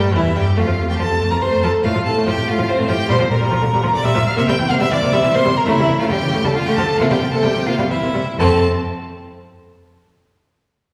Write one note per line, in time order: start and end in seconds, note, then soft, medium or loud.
0.00 0.16 G2 loud
0.00 0.15 G3 loud
0.00 0.14 G5 loud
0.14 0.36 E2 loud
0.14 0.35 E3 loud
0.14 0.24 E4 loud
0.14 0.38 E5 loud
0.36 0.57 G2 loud
0.36 0.44 G3 loud
0.36 0.60 G4 loud
0.36 0.57 G5 loud
0.57 0.63 F2 loud
0.57 0.61 A3 loud
0.57 0.92 F4 loud
0.57 0.89 F5 loud
0.67 0.73 F2 medium
0.67 0.72 F3 medium
0.78 0.84 F2 medium
0.78 0.83 C3 medium
0.89 0.94 F2 loud
0.89 0.94 A3 loud
0.89 1.02 G4 medium
0.89 0.98 G5 loud
0.98 1.05 F2 medium
0.98 1.04 F3 medium
0.98 1.31 A4 loud
0.98 1.32 A5 loud
1.11 1.15 F2 medium
1.11 1.15 C3 medium
1.21 1.25 F2 loud
1.21 1.26 A3 loud
1.31 1.36 F2 medium
1.31 1.36 F3 medium
1.31 1.43 A#4 loud
1.31 1.43 A#5 loud
1.41 1.47 F2 medium
1.41 1.46 C3 medium
1.41 1.65 C5 loud
1.41 1.62 C6 loud
1.51 1.57 F2 loud
1.51 1.56 A3 loud
1.62 1.68 F2 medium
1.62 1.68 F3 medium
1.62 1.84 A4 loud
1.62 1.70 A5 loud
1.83 1.89 A2 loud
1.83 1.89 A3 loud
1.83 2.06 F4 loud
1.83 2.05 F5 loud
1.95 2.00 A2 medium
1.95 1.99 F3 medium
2.05 2.10 A2 medium
2.05 2.10 C3 medium
2.05 2.14 A4 loud
2.05 2.25 A5 loud
2.16 2.20 A2 loud
2.16 2.21 A3 loud
2.26 2.31 A2 medium
2.26 2.31 F3 medium
2.26 2.50 G4 loud
2.26 2.50 G5 loud
2.37 2.41 A2 medium
2.37 2.42 C3 medium
2.48 2.52 A2 loud
2.48 2.53 A3 loud
2.48 2.71 F4 loud
2.48 2.70 F5 loud
2.58 2.63 A2 medium
2.58 2.63 F3 medium
2.69 2.73 A2 medium
2.69 2.73 C3 loud
2.69 2.89 C4 loud
2.69 2.90 C5 loud
2.79 2.84 A2 loud
2.79 2.83 A3 loud
2.89 2.94 A2 loud
2.89 2.93 F3 medium
2.89 3.13 G4 loud
2.89 3.09 G5 loud
3.09 3.15 A#2 loud
3.09 3.13 G3 loud
3.09 3.31 C5 loud
3.09 3.18 C6 loud
3.20 3.26 A#2 medium
3.20 3.24 F3 medium
3.30 3.36 A#2 medium
3.30 3.35 D3 medium
3.30 3.94 A#4 loud
3.30 3.93 A#5 loud
3.40 3.46 A#2 loud
3.40 3.45 G3 loud
3.51 3.57 A#2 medium
3.51 3.55 F3 loud
3.62 3.67 A#2 loud
3.62 3.66 D3 medium
3.72 3.78 A#2 loud
3.72 3.77 G3 loud
3.83 3.89 A#2 medium
3.83 3.88 F3 medium
3.93 3.99 A#2 medium
3.93 3.98 D3 medium
3.93 4.05 D5 loud
3.93 4.06 D6 loud
4.04 4.10 A#2 loud
4.04 4.09 G3 loud
4.04 4.26 E5 loud
4.04 4.29 E6 loud
4.15 4.21 A#2 medium
4.15 4.20 F3 medium
4.27 4.31 F5 loud
4.27 4.37 F6 loud
4.37 4.42 C3 loud
4.37 4.41 A#3 loud
4.37 4.48 E5 loud
4.37 4.42 E6 loud
4.48 4.53 C3 medium
4.48 4.53 G3 medium
4.48 4.72 G5 loud
4.48 4.57 G6 loud
4.59 4.63 C3 medium
4.59 4.64 E3 medium
4.70 4.74 C3 loud
4.70 4.74 A#3 loud
4.70 4.81 F5 loud
4.70 4.74 F6 loud
4.80 4.85 C3 loud
4.80 4.85 G3 medium
4.80 4.93 E5 loud
4.80 4.92 E6 loud
4.91 4.96 C3 medium
4.91 4.96 E3 medium
4.91 5.13 D5 loud
4.91 5.14 D6 loud
5.02 5.06 C3 loud
5.02 5.06 A#3 loud
5.12 5.18 C3 loud
5.12 5.17 G3 loud
5.12 5.23 E5 loud
5.12 5.22 E6 loud
5.23 5.29 C3 medium
5.23 5.28 E3 loud
5.23 5.36 E5 loud
5.23 5.34 E6 loud
5.34 5.40 C3 loud
5.34 5.39 A#3 loud
5.34 5.56 C5 loud
5.34 5.58 C6 loud
5.45 5.51 C3 loud
5.45 5.49 G3 loud
5.57 5.66 A#4 loud
5.57 5.67 A#5 loud
5.66 5.72 C#3 loud
5.66 5.72 A3 loud
5.66 6.01 E4 loud
5.66 5.99 E5 loud
5.79 5.84 C#3 medium
5.79 5.84 G3 medium
5.89 5.94 C#3 loud
5.89 5.94 E3 medium
6.00 6.05 C#3 loud
6.00 6.05 A3 loud
6.00 6.11 F4 loud
6.00 6.09 F5 loud
6.10 6.15 C#3 loud
6.10 6.17 G3 medium
6.10 6.47 G4 loud
6.10 6.46 G5 loud
6.22 6.26 C#3 loud
6.22 6.27 E3 medium
6.33 6.37 C#3 loud
6.33 6.38 A3 loud
6.44 6.49 C#3 medium
6.44 6.49 G3 medium
6.44 6.57 A4 loud
6.44 6.53 A5 loud
6.54 6.60 D3 medium
6.54 6.61 D3 loud
6.54 6.69 F4 loud
6.54 6.68 F5 loud
6.66 6.71 D3 loud
6.66 6.72 A3 loud
6.66 6.79 G4 loud
6.66 6.77 G5 loud
6.76 6.82 D3 medium
6.76 6.83 F3 medium
6.76 7.00 A4 loud
6.76 6.99 A5 loud
6.97 7.04 C3 loud
6.97 7.05 A#3 loud
6.97 7.05 F4 loud
6.97 7.09 F5 loud
7.10 7.14 C3 medium
7.10 7.15 G3 medium
7.10 7.19 G4 loud
7.10 7.33 G5 loud
7.21 7.25 C3 medium
7.21 7.26 F3 medium
7.32 7.36 C3 loud
7.32 7.37 A#3 loud
7.32 7.46 A4 loud
7.32 7.44 A5 loud
7.43 7.48 C3 medium
7.43 7.49 G3 medium
7.43 7.66 G4 loud
7.43 7.68 G5 loud
7.54 7.59 C3 medium
7.54 7.60 F3 medium
7.66 7.71 C3 loud
7.66 7.72 A#3 loud
7.66 7.75 F4 loud
7.66 7.90 F5 loud
7.78 7.83 C3 medium
7.78 7.84 G3 medium
7.90 7.95 C3 medium
7.90 7.96 E3 medium
7.90 8.38 E4 loud
7.90 8.38 E5 loud
8.02 8.07 C3 loud
8.02 8.07 A#3 loud
8.14 8.20 C3 medium
8.14 8.19 G3 medium
8.38 8.64 F2 loud
8.38 8.65 C4 loud
8.38 8.65 A4 loud
8.38 8.65 A5 loud